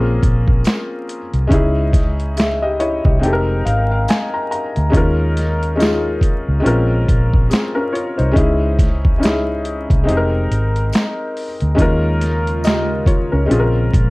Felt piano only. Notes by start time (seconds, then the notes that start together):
Already playing: A#3 C4 C#4 F4 G#4 A#4
1.47 G#3 C#4 D#4
1.52 E4 G#4
2.37 G#4 E5
2.62 G4 D#5
2.80 E4 C#5 D#5
3.05 G4 D#5
3.19 G#3 C4 D#4 G5
3.24 G4 A4
3.33 A#4
3.65 F5
3.91 F5
4.09 G#5
4.34 A#5
4.51 A#5
4.90 G#3 C#4 D#4
4.95 F4 A#4
5.75 G#3 C#4 D#4
5.81 F4 G#4
6.60 G#3 C4 C#4
6.65 F4 A#4
7.50 C4 G#4
7.75 C#4 A#4
7.93 F4 C#5
8.18 D#4 C5
8.32 G#3 C#4 D#4
8.37 E4 G#4
9.18 G#3 C#4 D#4
9.23 E4 G#4
10.04 G#3 C4 D#4
10.09 G4 G#4
10.17 A#4
11.75 G#3 C#4 D#4
11.80 F4 A#4
12.64 G4 D#5
13.07 F4 C#5
13.32 C#4 A#4
13.46 G#3 C4 C#4
13.51 F4 G#4
13.60 A#4